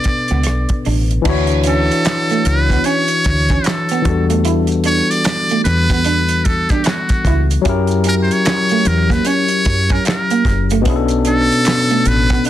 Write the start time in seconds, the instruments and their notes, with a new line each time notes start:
Already playing: tine electric piano B2 B3 D4 A4 B4, muted trumpet D5
0.04 muted clean electric guitar stroke, muted fingered electric bass stroke, kick, closed hi-hat
0.28 fingered electric bass C#2, clean electric guitar B3, closed hi-hat
0.43 fingered electric bass B1, cross-stick, closed hi-hat
0.69 kick, closed hi-hat
0.85 fingered electric bass A1, clean electric guitar D4, cross-stick, open hi-hat
1.11 closed hi-hat
1.22 tine electric piano E3 D4, kick, crash
1.26 fingered electric bass D2, clean electric guitar D4, tine electric piano E4 F#4 C#5, maracas
1.47 closed hi-hat, maracas
1.64 clean electric guitar C#4, closed hi-hat, maracas
1.68 muted trumpet A4
1.91 closed hi-hat, maracas
2.05 finger snap, snare, clap, closed hi-hat, maracas
2.29 clean electric guitar A3, closed hi-hat, maracas
2.45 fingered electric bass C#2, muted trumpet B4, muted clean electric guitar stroke, closed hi-hat, maracas
2.70 clean electric guitar B3, kick, closed hi-hat, maracas
2.84 clean electric guitar C#4, muted trumpet C#5, closed hi-hat, maracas
3.08 closed hi-hat, maracas
3.24 fingered electric bass D2, muted clean electric guitar stroke, kick, closed hi-hat, maracas
3.48 clean electric guitar C#4, kick, closed hi-hat, maracas
3.64 muted trumpet A4, finger snap, snare, clap, closed hi-hat, maracas
3.89 clean electric guitar B3, closed hi-hat, maracas
4.02 tine electric piano E3 B3 D4, kick, closed hi-hat
4.06 fingered electric bass E2, tine electric piano G3 F#4 A4, muted clean electric guitar stroke
4.30 clean electric guitar A3, closed hi-hat, maracas
4.45 clean electric guitar E4, closed hi-hat, maracas
4.67 closed hi-hat
4.72 maracas
4.84 clean electric guitar D4, muted trumpet C#5, closed hi-hat, maracas
5.10 muted trumpet D5, closed hi-hat, maracas
5.24 finger snap, snare, clap, closed hi-hat, maracas
5.49 clean electric guitar A3, closed hi-hat, maracas
5.64 fingered electric bass E2, muted trumpet B4, muted clean electric guitar stroke, closed hi-hat, maracas
5.90 clean electric guitar B3, kick, snare, closed hi-hat, maracas
6.04 clean electric guitar D4, closed hi-hat, maracas
6.29 closed hi-hat, maracas
6.45 muted trumpet A4, muted clean electric guitar stroke, kick, closed hi-hat, maracas
6.69 clean electric guitar D4, muted trumpet G4, kick, closed hi-hat, maracas
6.84 muted trumpet F#4, finger snap, snare, clap, closed hi-hat, maracas
7.09 kick, closed hi-hat, maracas
7.25 fingered electric bass C#2, clean electric guitar E4, kick, closed hi-hat
7.51 closed hi-hat, maracas
7.62 tine electric piano F#3 C#4 E4, closed hi-hat
7.66 fingered electric bass F#2, clean electric guitar E4, tine electric piano G4 A#4, kick, maracas
7.87 closed hi-hat, maracas
8.04 clean electric guitar C#4, closed hi-hat, maracas
8.09 muted trumpet A#4
8.23 muted trumpet C5
8.31 muted trumpet C#5, closed hi-hat, maracas
8.45 finger snap, snare, clap, closed hi-hat, maracas
8.69 clean electric guitar A3, closed hi-hat, maracas
8.85 fingered electric bass E2, muted trumpet A#4, muted clean electric guitar stroke, closed hi-hat, maracas
9.10 clean electric guitar A#3, muted trumpet B4, kick, snare, closed hi-hat, maracas
9.25 clean electric guitar C#4, muted trumpet C#5, closed hi-hat, maracas
9.48 closed hi-hat, maracas
9.65 fingered electric bass F#2, muted clean electric guitar stroke, kick, closed hi-hat, maracas
9.89 clean electric guitar C#4, muted trumpet A#4, kick, closed hi-hat, maracas
10.05 muted trumpet A#4, finger snap, snare, clap, closed hi-hat, maracas
10.30 clean electric guitar A#3, closed hi-hat, maracas
10.45 fingered electric bass F#1, muted clean electric guitar stroke, kick, snare, closed hi-hat
10.70 clean electric guitar A3, closed hi-hat, maracas
10.81 tine electric piano B2 B3, closed hi-hat
10.86 fingered electric bass B1, tine electric piano C#4 D4 G#4, clean electric guitar E4, kick, maracas
10.96 tine electric piano A4
11.08 closed hi-hat, maracas
11.25 clean electric guitar D4, muted trumpet A4, closed hi-hat, maracas
11.51 closed hi-hat, maracas
11.65 finger snap, snare, clap, closed hi-hat, maracas
11.90 clean electric guitar A3, closed hi-hat, maracas
12.05 fingered electric bass A1, muted trumpet B4, muted clean electric guitar stroke, closed hi-hat, maracas
12.30 clean electric guitar B3, kick, closed hi-hat, maracas
12.44 clean electric guitar D4, closed hi-hat, maracas